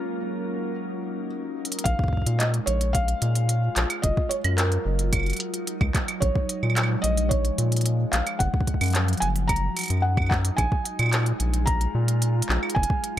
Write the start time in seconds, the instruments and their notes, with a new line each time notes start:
Already playing: ambient pad F#3 A#3 C#4 F4 A#4, felt piano A#4
0.38 ambient pad D#4
1.65 closed hi-hat
1.72 closed hi-hat
1.79 closed hi-hat
1.84 analog synth bass A#1, ambient pad G#3, felt piano F5, kick, closed hi-hat
1.99 kick
2.04 kick
2.08 kick
2.13 kick
2.17 kick
2.22 kick
2.26 analog synth bass A#2, closed hi-hat
2.39 felt piano D#5, clap, closed hi-hat
2.54 closed hi-hat
2.64 analog synth bass A#1, ambient pad F4, felt piano C#5, closed hi-hat
2.81 closed hi-hat
2.93 felt piano F5, kick, closed hi-hat
3.08 closed hi-hat
3.22 analog synth bass A#2, closed hi-hat
3.35 closed hi-hat
3.49 closed hi-hat
3.76 analog synth bass A#1, clap, closed hi-hat
3.90 closed hi-hat, claves
4.02 analog synth bass F#1, ambient pad F#3, felt piano D#5, kick, closed hi-hat
4.17 kick
4.29 felt piano C#5, closed hi-hat
4.44 analog synth bass F#2, closed hi-hat, claves
4.57 felt piano A#4, clap, closed hi-hat
4.72 closed hi-hat
4.85 analog synth bass F#1
4.99 ambient pad D#4, closed hi-hat
5.13 kick, closed hi-hat, claves
5.16 claves
5.19 claves
5.23 closed hi-hat, claves
5.26 closed hi-hat, claves
5.30 closed hi-hat, claves
5.33 closed hi-hat, claves
5.37 closed hi-hat, claves
5.54 closed hi-hat
5.67 closed hi-hat
5.81 analog synth bass C#2, kick, claves
5.95 kick, clap, closed hi-hat, claves
6.08 closed hi-hat, claves
6.20 analog synth bass A#1, ambient pad G#3, felt piano C#5, kick, closed hi-hat
6.36 kick
6.41 ambient pad F3
6.49 closed hi-hat
6.63 analog synth bass A#2, claves
6.70 claves
6.77 clap, closed hi-hat, claves
6.83 claves
7.02 analog synth bass A#1, felt piano D#5, closed hi-hat
7.17 closed hi-hat
7.29 felt piano C#5, kick, closed hi-hat
7.45 closed hi-hat
7.58 analog synth bass A#2, closed hi-hat
7.72 closed hi-hat
7.76 closed hi-hat
7.81 closed hi-hat
7.86 closed hi-hat
8.12 analog synth bass A#1, felt piano F5, clap, closed hi-hat
8.27 closed hi-hat, claves
8.39 analog synth bass F#1, ambient pad F#3, felt piano F#5, kick, closed hi-hat
8.54 kick
8.61 kick
8.67 kick, closed hi-hat
8.74 kick
8.81 analog synth bass F#2, closed hi-hat, claves
8.83 closed hi-hat
8.86 closed hi-hat
8.88 closed hi-hat
8.90 closed hi-hat
8.93 clap, closed hi-hat
8.95 closed hi-hat
9.08 closed hi-hat
9.13 closed hi-hat
9.17 felt piano G#5, closed hi-hat
9.22 analog synth bass F#1, closed hi-hat
9.36 ambient pad D#4, closed hi-hat
9.48 felt piano A#5, kick, closed hi-hat, claves
9.56 closed hi-hat
9.77 closed hi-hat, claves
9.79 closed hi-hat, claves
9.81 closed hi-hat
9.83 closed hi-hat, claves
9.86 closed hi-hat, claves
9.88 analog synth bass F#2, closed hi-hat
9.90 closed hi-hat, claves
9.97 claves
10.00 felt piano F#5, claves
10.17 kick, claves
10.22 claves
10.26 felt piano F#5, claves
10.31 kick, clap, claves
10.45 closed hi-hat
10.57 analog synth bass A#1, ambient pad G#3, felt piano G#5, kick, closed hi-hat, claves
10.72 kick
10.85 closed hi-hat
10.99 analog synth bass A#2, closed hi-hat, claves
11.03 claves
11.06 ambient pad F4, claves
11.09 clap, closed hi-hat, claves
11.16 claves
11.20 claves
11.23 closed hi-hat, claves
11.40 analog synth bass A#1, closed hi-hat
11.54 closed hi-hat
11.66 felt piano A#5, kick, closed hi-hat
11.81 closed hi-hat
11.95 analog synth bass A#2
12.08 closed hi-hat
12.22 closed hi-hat
12.42 closed hi-hat
12.49 analog synth bass A#1, clap
12.63 claves
12.70 closed hi-hat
12.75 analog synth bass F#1, ambient pad F#3, felt piano G#5, kick
12.83 closed hi-hat
12.90 kick
13.04 closed hi-hat
13.09 ambient pad D#4